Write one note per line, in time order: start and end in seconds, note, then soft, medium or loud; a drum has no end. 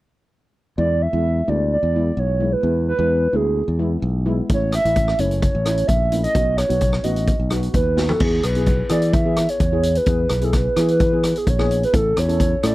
0.77 1.06 E2 medium
0.77 0.99 G#3 medium
0.77 0.99 B3 soft
0.77 0.99 E4 medium
0.77 1.03 D5 loud
1.02 1.50 E5 loud
1.13 1.41 E2 medium
1.13 1.34 G#3 medium
1.13 1.34 B3 soft
1.13 1.34 E4 medium
1.47 1.76 D2 medium
1.47 1.76 G#3 medium
1.47 1.76 B3 medium
1.47 1.76 E4 medium
1.47 1.72 D5 medium
1.72 2.21 D5 medium
1.83 2.10 E2 medium
1.95 2.23 G#3 medium
1.95 2.23 B3 medium
1.95 2.23 E4 medium
2.17 2.54 B1 medium
2.17 2.54 C#5 medium
2.40 2.55 G#3 medium
2.40 2.54 B3 soft
2.40 2.55 E4 medium
2.53 2.87 B4 medium
2.63 2.91 E2 medium
2.63 2.84 G#3 medium
2.63 2.84 B3 medium
2.63 2.85 E4 medium
2.89 3.37 B4 loud
2.99 3.26 E2 medium
2.99 3.20 G#3 medium
2.99 3.20 B3 soft
2.99 3.20 E4 medium
3.33 3.61 D2 medium
3.33 3.61 G#3 medium
3.33 3.61 B3 medium
3.33 3.61 E4 medium
3.33 3.81 G#4 medium
3.68 3.96 E2 medium
3.79 4.08 G#3 medium
3.79 4.08 B3 medium
3.79 4.08 E4 medium
4.02 4.40 B1 medium
4.26 4.41 G#3 medium
4.26 4.40 B3 medium
4.26 4.40 E4 medium
4.49 4.78 A1 medium
4.49 4.71 A3 medium
4.49 4.71 C#4 medium
4.49 4.71 E4 medium
4.49 4.73 C#5 loud
4.49 kick medium
4.49 closed hi-hat medium
4.72 5.21 E5 loud
4.72 cross-stick medium
4.72 closed hi-hat medium
4.85 5.12 A1 medium
4.85 5.06 A3 medium
4.85 5.06 C#4 soft
4.85 5.06 E4 medium
4.85 closed hi-hat medium
4.96 kick medium
4.96 closed hi-hat soft
5.08 cross-stick medium
5.19 5.47 F#1 medium
5.19 5.48 A3 medium
5.19 5.47 C#4 medium
5.19 5.47 E4 medium
5.19 5.42 C#5 medium
5.19 closed hi-hat medium
5.31 closed hi-hat soft
5.42 5.89 C#5 medium
5.42 kick medium
5.42 closed hi-hat soft
5.55 5.82 A1 medium
5.65 5.94 A3 medium
5.65 5.93 C#4 medium
5.65 5.94 E4 medium
5.65 cross-stick medium
5.65 closed hi-hat medium
5.77 closed hi-hat medium
5.87 6.26 A#1 medium
5.87 6.23 E5 loud
5.87 kick medium
5.87 closed hi-hat medium
6.12 6.26 A3 medium
6.12 6.27 C#4 medium
6.12 6.27 E4 medium
6.12 closed hi-hat medium
6.24 6.59 D#5 medium
6.24 closed hi-hat medium
6.34 6.63 B1 medium
6.34 6.56 B3 medium
6.34 6.56 D#4 medium
6.34 6.56 F#4 medium
6.34 kick medium
6.34 closed hi-hat medium
6.57 7.05 C#5 loud
6.57 cross-stick medium
6.57 closed hi-hat medium
6.69 6.98 B1 medium
6.69 6.91 B3 medium
6.69 6.91 D#4 medium
6.69 6.91 F#4 medium
6.69 closed hi-hat medium
6.81 kick medium
6.81 closed hi-hat medium
6.93 cross-stick medium
7.04 7.33 A1 medium
7.04 7.33 B3 medium
7.04 7.33 D#4 medium
7.04 7.33 F#4 medium
7.04 7.51 D#5 medium
7.04 closed hi-hat medium
7.16 closed hi-hat soft
7.27 kick medium
7.27 closed hi-hat medium
7.40 7.67 B1 medium
7.50 7.79 B3 medium
7.50 7.80 D#4 medium
7.50 7.80 F#4 medium
7.50 cross-stick medium
7.50 closed hi-hat medium
7.63 closed hi-hat soft
7.74 8.11 D#2 medium
7.74 8.11 B4 medium
7.74 kick medium
7.74 closed hi-hat medium
7.97 8.12 B3 medium
7.97 8.12 D#4 medium
7.97 8.12 F#4 medium
7.97 snare soft
8.09 8.23 A4 medium
8.09 floor tom medium
8.20 8.39 E2 medium
8.20 8.42 B3 medium
8.20 8.42 E4 medium
8.20 8.42 G#4 medium
8.20 8.46 G#4 medium
8.20 kick loud
8.20 crash medium
8.43 8.81 B1 medium
8.43 8.91 B4 loud
8.43 cross-stick medium
8.43 closed hi-hat medium
8.55 8.77 B3 medium
8.55 8.77 E4 medium
8.55 8.77 G#4 medium
8.55 closed hi-hat medium
8.66 kick medium
8.66 closed hi-hat medium
8.89 9.46 E3 medium
8.89 9.11 B3 medium
8.89 9.11 E4 medium
8.89 9.11 G#4 medium
8.89 9.14 D5 medium
8.89 cross-stick medium
8.89 closed hi-hat medium
9.02 closed hi-hat medium
9.13 9.51 E5 loud
9.13 kick medium
9.13 closed hi-hat medium
9.25 9.54 B3 medium
9.25 9.54 E4 medium
9.25 9.54 G#4 medium
9.36 cross-stick medium
9.36 closed hi-hat medium
9.49 9.98 C#5 loud
9.49 closed hi-hat medium
9.60 9.97 E2 medium
9.60 kick medium
9.60 closed hi-hat medium
9.72 9.94 B3 medium
9.72 9.94 E4 medium
9.72 9.94 G#4 medium
9.83 closed hi-hat medium
9.95 10.46 B4 medium
9.95 closed hi-hat medium
10.06 10.25 E2 medium
10.06 10.28 B3 medium
10.06 10.29 E4 medium
10.06 10.29 G#4 medium
10.06 kick loud
10.06 closed hi-hat medium
10.29 10.67 B1 medium
10.29 cross-stick medium
10.29 closed hi-hat medium
10.41 10.63 B3 medium
10.41 10.63 E4 medium
10.41 10.63 G#4 medium
10.41 10.57 A4 medium
10.41 closed hi-hat medium
10.53 10.90 B4 loud
10.53 kick medium
10.53 cross-stick medium
10.53 closed hi-hat medium
10.76 11.32 E3 medium
10.76 10.99 B3 medium
10.76 10.99 E4 medium
10.76 10.99 G#4 medium
10.76 cross-stick medium
10.76 closed hi-hat medium
10.88 11.39 B4 loud
10.88 closed hi-hat medium
11.00 kick loud
11.00 closed hi-hat medium
11.13 11.40 B3 medium
11.13 11.40 E4 medium
11.13 11.40 G#4 medium
11.23 cross-stick medium
11.23 closed hi-hat medium
11.36 11.50 G#4 medium
11.36 closed hi-hat soft
11.47 11.84 A#1 medium
11.47 11.83 C#5 loud
11.47 kick medium
11.47 closed hi-hat medium
11.59 11.80 B3 medium
11.59 11.80 E4 medium
11.59 11.80 G#4 medium
11.59 cross-stick medium
11.71 closed hi-hat medium
11.83 11.97 B4 medium
11.83 closed hi-hat medium
11.93 12.12 A1 medium
11.93 12.15 C#4 medium
11.93 12.15 E4 medium
11.93 12.15 A4 medium
11.93 12.20 A4 loud
11.93 kick loud
11.93 closed hi-hat medium
12.17 12.54 E2 medium
12.17 12.64 C#5 loud
12.17 cross-stick medium
12.17 closed hi-hat medium
12.28 12.50 C#4 medium
12.28 12.49 E4 medium
12.28 12.50 A4 medium
12.28 closed hi-hat soft
12.40 kick medium
12.40 closed hi-hat medium
12.63 12.75 A2 medium
12.63 12.75 C#4 medium
12.63 12.75 E4 medium
12.63 12.75 A4 medium
12.63 12.75 D5 loud
12.63 cross-stick medium
12.63 closed hi-hat medium